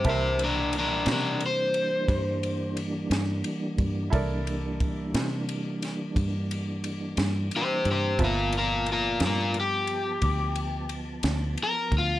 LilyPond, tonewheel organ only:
\new Staff \with { instrumentName = "Tonewheel organ" } { \time 12/8 \key c \mixolydian \tempo 4. = 59 <e g bes d'>1. | <e g bes d'>1. | <f b a''>1. | }